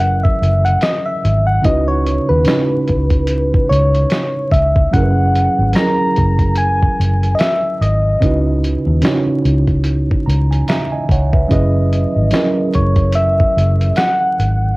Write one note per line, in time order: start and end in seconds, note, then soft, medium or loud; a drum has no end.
0.00 0.28 F#1 medium
0.00 1.66 F#3 medium
0.00 1.63 C#4 medium
0.00 1.65 E4 medium
0.00 1.66 G#4 medium
0.00 0.35 A#4 medium
0.00 1.66 B4 medium
0.00 1.66 E5 medium
0.00 0.25 F#5 medium
0.24 0.66 E5 medium
0.24 kick medium
0.42 0.75 F#1 medium
0.42 closed hi-hat medium
0.65 0.82 F#5 loud
0.65 closed hi-hat soft
0.81 1.07 D#5 loud
0.81 snare loud
0.81 closed hi-hat medium
1.06 1.48 E5 loud
1.25 1.58 G#1 medium
1.25 closed hi-hat medium
1.47 1.67 F#5 medium
1.62 2.18 C#2 loud
1.62 2.23 C#3 medium
1.62 2.23 C#4 medium
1.62 2.24 D#4 medium
1.62 2.24 E4 medium
1.62 1.89 D#5 medium
1.62 kick loud
1.62 closed hi-hat medium
1.66 2.25 F#4 medium
1.66 2.25 B4 medium
1.88 2.30 C#5 loud
2.06 closed hi-hat medium
2.29 2.44 D#2 medium
2.29 3.71 B4 loud
2.45 3.62 C#3 medium
2.45 3.62 C#4 medium
2.45 3.63 D#4 medium
2.45 3.63 E4 medium
2.45 snare loud
2.45 closed hi-hat medium
2.49 3.64 F#4 medium
2.49 3.65 B4 medium
2.87 3.57 C#2 medium
2.87 kick medium
2.87 closed hi-hat medium
3.10 kick medium
3.10 closed hi-hat soft
3.27 closed hi-hat medium
3.54 kick loud
3.69 4.04 C#2 medium
3.69 4.53 C#5 loud
3.69 closed hi-hat medium
3.95 closed hi-hat soft
4.10 snare loud
4.10 closed hi-hat medium
4.51 4.86 C#2 medium
4.51 4.95 E5 medium
4.51 kick medium
4.51 closed hi-hat medium
4.76 kick medium
4.91 5.47 F#1 medium
4.91 5.52 F#3 medium
4.91 5.53 C#4 medium
4.91 5.53 E4 medium
4.91 5.77 F#5 loud
4.91 kick loud
4.91 closed hi-hat medium
4.95 5.54 G#4 medium
4.95 5.02 A#4 medium
5.03 5.58 B4 medium
5.35 closed hi-hat medium
5.59 5.73 G#1 medium
5.73 6.91 F#3 medium
5.73 6.92 C#4 medium
5.73 6.92 E4 medium
5.73 6.59 A#5 loud
5.73 snare loud
5.73 closed hi-hat medium
5.78 6.93 G#4 medium
5.78 6.94 A#4 medium
6.16 6.85 F#1 medium
6.16 kick medium
6.16 closed hi-hat soft
6.39 kick medium
6.39 closed hi-hat soft
6.55 7.36 G#5 loud
6.55 closed hi-hat loud
6.82 kick medium
7.00 7.33 F#1 medium
7.00 closed hi-hat medium
7.23 closed hi-hat soft
7.35 7.41 D#5 medium
7.35 closed hi-hat medium
7.40 7.83 E5 loud
7.40 snare loud
7.81 8.15 G#1 medium
7.81 8.63 D#5 medium
7.81 closed hi-hat medium
8.20 8.75 C#2 loud
8.20 8.81 C#3 medium
8.20 8.81 C#4 medium
8.20 8.82 D#4 medium
8.20 8.82 E4 medium
8.20 kick loud
8.20 closed hi-hat medium
8.25 8.83 F#4 medium
8.25 8.83 B4 medium
8.64 closed hi-hat medium
8.87 9.01 D#2 medium
9.02 10.19 C#3 medium
9.02 10.20 C#4 medium
9.02 10.20 D#4 medium
9.02 10.21 E4 medium
9.02 snare loud
9.02 closed hi-hat medium
9.06 10.21 F#4 medium
9.06 10.22 C#5 medium
9.45 10.13 C#2 medium
9.45 closed hi-hat medium
9.67 kick medium
9.67 closed hi-hat soft
9.84 closed hi-hat loud
10.11 kick medium
10.26 10.61 C#2 medium
10.26 10.48 A#5 medium
10.26 closed hi-hat medium
10.51 10.67 G#5 medium
10.51 closed hi-hat soft
10.68 10.91 E5 medium
10.68 10.91 A#5 medium
10.68 snare loud
10.68 closed hi-hat medium
10.92 11.09 D#5 medium
10.92 11.09 G#5 medium
11.09 11.43 C#2 medium
11.09 11.33 C#5 medium
11.09 11.32 F#5 medium
11.09 kick medium
11.09 closed hi-hat medium
11.33 11.52 B4 medium
11.33 11.72 E5 medium
11.33 kick medium
11.48 12.04 F#1 loud
11.48 12.09 F#3 medium
11.48 12.10 C#4 medium
11.48 12.10 E4 medium
11.48 12.11 G#4 medium
11.48 kick loud
11.48 closed hi-hat medium
11.52 12.12 B4 medium
11.52 12.76 D#5 medium
11.93 closed hi-hat medium
12.16 12.30 G#1 medium
12.30 13.48 F#3 medium
12.30 13.49 C#4 medium
12.30 13.49 E4 medium
12.30 snare loud
12.30 closed hi-hat medium
12.35 13.50 G#4 medium
12.35 13.50 A#4 medium
12.74 13.43 F#1 medium
12.74 13.17 C#5 medium
12.74 kick medium
12.74 closed hi-hat medium
12.96 kick medium
12.96 closed hi-hat soft
13.13 13.99 E5 loud
13.13 closed hi-hat medium
13.40 kick medium
13.57 13.90 F#1 medium
13.57 closed hi-hat medium
13.81 closed hi-hat soft
13.96 14.77 F#5 loud
13.96 snare loud
13.96 closed hi-hat medium
14.39 14.73 G#1 medium
14.39 closed hi-hat medium